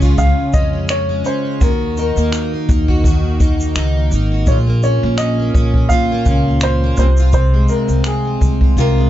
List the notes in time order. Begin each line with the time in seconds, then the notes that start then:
Already playing: C#2 C#3 G#3 C#4 C#5
0.02 F4, kick, shaker
0.17 C#3 F4 F5, kick, shaker
0.38 G#3
0.53 F2 C#4 D#5, kick, shaker
0.73 G#3
0.89 C#4 C#5, finger snap, shaker
1.09 G#3
1.24 C#4 C5, shaker
1.45 F4
1.61 D#2 D#3 F#4 A#4, kick, shaker
1.81 A#3
1.97 D#4 A#4, shaker
2.16 D#2 A#3, shaker
2.32 D#4, finger snap, shaker
2.54 A#3
2.69 D#2 D#4, kick, shaker
2.88 F#4, kick
3.04 D#3 F#4, kick, shaker
3.24 A#3
3.40 D#4, kick, shaker
3.60 A#3, shaker
3.75 C#2 D#4, finger snap, shaker
3.97 A#3
4.11 G#1 D#4, shaker
4.32 F#4
4.47 A#1 A#2 F4 C#5, kick, shaker
4.67 A#3
4.83 C#4 C#5, shaker
5.03 A#1 A#3
5.18 C#4 D#5, finger snap, shaker
5.39 A#3
5.54 A#1 C#4, kick, shaker
5.74 F4, kick
5.89 A#2 F4 F5, kick, shaker
6.12 A#3
6.26 C#2 C#4, kick, shaker
6.48 A#3
6.61 C#4 C5, finger snap, shaker
6.84 A#3
6.97 C2 C3 C5, shaker
7.17 F4, shaker
7.33 C3 F4 C5, kick, shaker
7.54 G#3
7.68 C4 A#4, shaker
7.88 C2 G#3, shaker
8.04 C4 G#4, finger snap, shaker
8.25 G#3
8.41 C2 C4, kick, shaker
8.61 F4, kick
8.77 C3 F4 A#4, kick, shaker
8.98 G#3